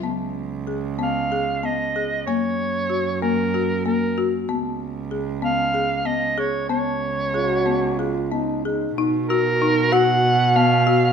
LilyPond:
<<
  \new Staff \with { instrumentName = "Soprano saxophone" } { \time 7/8 \key des \mixolydian \tempo 4 = 94 r4. f''4 ees''4 | des''4. bes'4 bes'8. r16 | r4. f''4 ees''8 des''8 | des''2~ des''8 r4 |
r8 bes'4 ges''4 f''4 | }
  \new Staff \with { instrumentName = "Marimba" } { \time 7/8 \key des \mixolydian ces'4 aes'8 ces'8 aes'8 ces'8 aes'8 | bes4 ges'8 bes8 ges'8 bes8 ges'8 | ces'4 aes'8 ces'8 aes'8 ces'8 aes'8 | ces'4 aes'8 ces'8 aes'8 ces'8 aes'8 |
ees'8 ges'8 ees'8 ges'4 ces'8 ges'8 | }
  \new Staff \with { instrumentName = "French horn" } { \time 7/8 \key des \mixolydian r2. r8 | r2. r8 | r2. r8 | r4 ges'4 f'8 ees'8 ees'8 |
r2. r8 | }
  \new Staff \with { instrumentName = "Cello" } { \clef bass \time 7/8 \key des \mixolydian des,2.~ des,8 | ges,2.~ ges,8 | des,2.~ des,8 | des,2.~ des,8 |
ces2.~ ces8 | }
>>